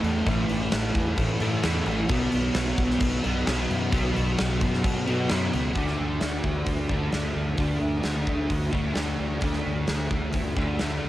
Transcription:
Already playing: distorted electric guitar A2 E3 A3
0.03 fingered electric bass E2, crash
0.26 fingered electric bass A1, distorted electric guitar A2 E3 A3, kick, crash
0.49 fingered electric bass A1, crash
0.72 fingered electric bass A1, snare, crash
0.95 fingered electric bass E2, kick, crash
1.18 fingered electric bass A2, kick, crash
1.40 fingered electric bass A2, distorted electric guitar E3 A3, crash
1.44 distorted electric guitar A2
1.63 fingered electric bass E2, distorted electric guitar A2 E3 A3, snare, crash
1.86 fingered electric bass A1, crash
2.09 fingered electric bass B1, distorted electric guitar B2 F#3 B3, kick, crash
2.32 fingered electric bass B1, crash
2.54 fingered electric bass B1, snare, crash
2.78 fingered electric bass B1, kick, crash
2.90 snare
3.00 fingered electric bass B1, kick, crash
3.23 fingered electric bass B1, distorted electric guitar B2 F#3 B3, crash
3.47 fingered electric bass B1, distorted electric guitar B2 F#3 B3, snare, crash
3.71 fingered electric bass F#2, crash
3.91 fingered electric bass B1, distorted electric guitar B2 F#3 B3, kick, crash
4.16 fingered electric bass B1, crash
4.38 fingered electric bass B1, snare, crash
4.61 fingered electric bass F#2, kick, crash
4.73 snare
4.84 fingered electric bass B2, kick, crash
5.05 distorted electric guitar B2 F#3 B3, fingered electric bass B2, crash
5.29 fingered electric bass F#2, distorted electric guitar B2 F#3 B3, snare, crash
5.53 fingered electric bass C#2, crash
5.75 fingered electric bass D2, distorted electric guitar D3 A3 D4, kick, open hi-hat
5.87 snare
6.00 fingered electric bass D2
6.21 fingered electric bass D2, snare, open hi-hat
6.44 fingered electric bass D2, kick
6.66 fingered electric bass D2, kick, open hi-hat
6.89 fingered electric bass D2, distorted electric guitar D3 A3 D4, kick
7.11 fingered electric bass D2, distorted electric guitar D3 A3 D4, snare, open hi-hat
7.36 fingered electric bass D2
7.56 fingered electric bass D2, distorted electric guitar D3 A3 D4, kick, open hi-hat
7.81 fingered electric bass D2
8.03 fingered electric bass D2, snare, open hi-hat
8.27 fingered electric bass D2, kick
8.50 fingered electric bass D2, kick, open hi-hat
8.72 fingered electric bass D2, distorted electric guitar D3 A3 D4, kick
8.94 fingered electric bass D2, distorted electric guitar D3 A3 D4, snare, open hi-hat
9.19 fingered electric bass D2
9.41 fingered electric bass D2, distorted electric guitar D3 A3 D4, kick, open hi-hat
9.53 snare
9.66 fingered electric bass D2
9.87 fingered electric bass D2, snare, open hi-hat
10.11 fingered electric bass D2, kick
10.33 fingered electric bass D2, kick, open hi-hat
10.56 fingered electric bass D2, distorted electric guitar D3 A3 D4, kick
10.79 fingered electric bass D2, distorted electric guitar D3 A3 D4, snare, open hi-hat
11.04 fingered electric bass D2

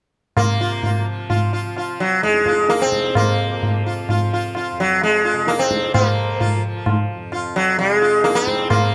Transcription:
0.37 tanpura C3, sitar A#3, tabla na, tabla ge
0.61 sitar F4
0.83 sitar F4, tabla tin, tabla ge
0.99 tanpura F3
1.30 sitar F4, tabla na, tabla ge
1.53 sitar F4
1.61 tanpura F3
1.77 sitar F4, tabla na
2.00 sitar F#3
2.23 tanpura F2, sitar G#3, tabla te
2.34 tabla te
2.46 sitar F4, tabla ke
2.57 tabla te
2.69 sitar A#3, tabla te
2.81 sitar C4, tabla te
2.85 tanpura C3
2.92 tabla ke
3.04 tabla te
3.15 sitar A#3, tabla na, tabla ge
3.47 tanpura F3
3.63 tabla tin, tabla ge
3.86 sitar F4
4.09 tanpura F3, sitar F4, tabla na, tabla ge
4.33 sitar F4
4.55 sitar F4, tabla na
4.72 tanpura F2
4.80 sitar F#3
5.01 sitar G#3, tabla tin
5.25 sitar F4
5.33 tanpura C3
5.47 sitar A#3, tabla te
5.59 sitar C4, tabla te
5.71 tabla ke
5.82 tabla te
5.94 tanpura F3, sitar A#3, tabla na, tabla ge
6.40 sitar F4, tabla tin, tabla ge
6.56 tanpura F3
6.86 tabla na, tabla ge
7.16 tanpura F2
7.32 sitar F4, tabla na
7.56 sitar F#3
7.78 tanpura C3, sitar G#3, tabla tin
8.02 sitar F4
8.24 sitar A#3, tabla te
8.35 tanpura F3, sitar C4, tabla te
8.47 tabla ke
8.59 tabla te
8.70 sitar A#3, tabla na, tabla ge

